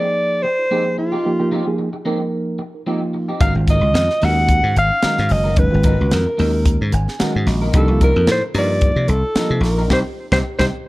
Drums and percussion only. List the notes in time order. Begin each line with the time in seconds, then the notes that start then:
3.41 kick, closed hi-hat
3.68 kick, closed hi-hat
3.95 snare, closed hi-hat
4.10 snare
4.22 open hi-hat
4.49 kick, closed hi-hat
4.76 closed hi-hat
5.02 snare, closed hi-hat
5.17 snare
5.29 open hi-hat
5.56 kick, closed hi-hat
5.83 kick, closed hi-hat
6.11 snare, closed hi-hat
6.39 open hi-hat
6.66 kick, closed hi-hat
6.92 closed hi-hat
7.08 snare
7.20 snare, closed hi-hat
7.47 snare, open hi-hat
7.74 kick, closed hi-hat
8.01 kick, closed hi-hat
8.27 snare, closed hi-hat
8.54 open hi-hat
8.81 kick, closed hi-hat
9.08 closed hi-hat
9.36 snare, closed hi-hat
9.64 snare, open hi-hat
9.90 kick, snare
10.32 kick, snare
10.59 kick, snare